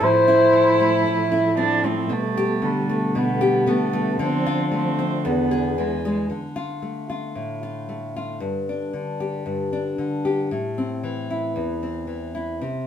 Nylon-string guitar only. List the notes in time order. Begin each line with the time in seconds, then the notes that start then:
0.00 A2
0.28 E4
0.53 F3
0.80 A3
1.06 A2
1.32 E4
1.57 F3 C4
1.84 A3
2.09 B2
2.37 G4
2.62 D3
2.89 A3
3.15 B2
3.41 G4
3.66 D3 B3
3.93 A3
4.19 D3
4.46 F4
4.72 A3
4.99 C4
5.25 E2
5.51 G#4
5.78 E3
6.05 G#3
6.30 D3
6.56 F4
6.82 A3
7.10 F4
7.35 A2
7.63 F4
7.89 A3
8.16 F4
8.40 G2
8.69 D4
8.93 D3
9.20 G4
9.46 G2
9.73 D4
9.98 D3
10.25 G4
10.51 A2
10.78 C4
11.03 E3
11.30 E4
11.56 E2
11.83 C4
12.07 E3
12.35 E4
12.61 C3